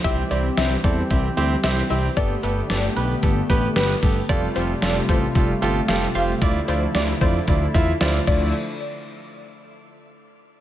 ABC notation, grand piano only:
X:1
M:4/4
L:1/8
Q:1/4=113
K:Ddor
V:1 name="Grand piano"
[CEG] [CEG] [CEG] [CEA] [CEG] [CEG] [CEG] [CEG] | [B,GA] [B,GA] [B,GA] [B,GB] [B,GA] [B,GB] [B,GB] [B,GA] | [FGA] [FGA] [FGA] [FGA] [FGA] [FGA] [FGA] [FGc] | [EFd] [EFd] [EFd] [EFd] [EFd] [EFe] [EFd] [EFd] |
z8 |]